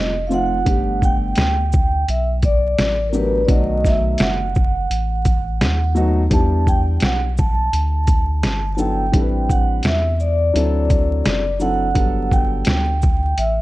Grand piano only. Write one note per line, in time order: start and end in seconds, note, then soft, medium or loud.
0.00 0.12 F3 medium
0.00 0.13 A3 medium
0.00 0.13 C4 medium
0.00 0.13 D#4 medium
0.00 0.13 G4 medium
0.29 0.56 F3 medium
0.29 0.56 A3 medium
0.29 0.56 C4 medium
0.29 0.56 D#4 medium
0.29 0.57 F4 medium
0.65 1.60 G3 medium
0.65 1.60 A3 medium
0.65 1.60 B3 medium
0.65 1.60 D4 medium
0.65 1.61 G4 medium
3.12 3.38 F#3 medium
3.12 3.39 A3 medium
3.12 3.39 B3 medium
3.12 3.39 D4 medium
3.12 3.40 G4 medium
3.48 4.43 D#3 medium
3.48 4.42 F#3 medium
3.48 4.42 A3 medium
3.48 4.43 B3 medium
3.48 4.43 F#4 medium
5.95 6.21 F#3 medium
5.95 6.21 A3 medium
5.95 6.21 B3 medium
5.95 6.22 D#4 medium
5.95 6.22 F#4 medium
6.30 7.25 G3 medium
6.30 7.25 B3 medium
6.30 7.25 D4 medium
6.30 7.25 E4 medium
6.30 7.26 G4 medium
8.77 9.03 F#3 medium
8.77 9.03 B3 medium
8.77 9.03 D4 medium
8.77 9.04 E4 medium
8.77 9.04 A4 medium
9.12 10.07 G3 medium
9.12 10.07 C4 medium
9.12 10.07 D4 medium
9.12 10.08 E4 medium
9.12 9.22 A4 medium
9.21 10.11 B4 medium
10.54 11.42 F#3 medium
10.54 11.42 C4 medium
10.54 11.43 D4 medium
10.54 11.43 E4 medium
10.54 11.43 A4 medium
11.59 11.85 F#3 medium
11.59 11.86 C4 medium
11.59 11.86 D4 medium
11.59 11.86 E4 medium
11.59 11.87 A4 medium
11.94 12.90 F#3 medium
11.94 12.89 G3 medium
11.94 12.89 B3 medium
11.94 12.90 D4 medium
11.94 12.90 A4 medium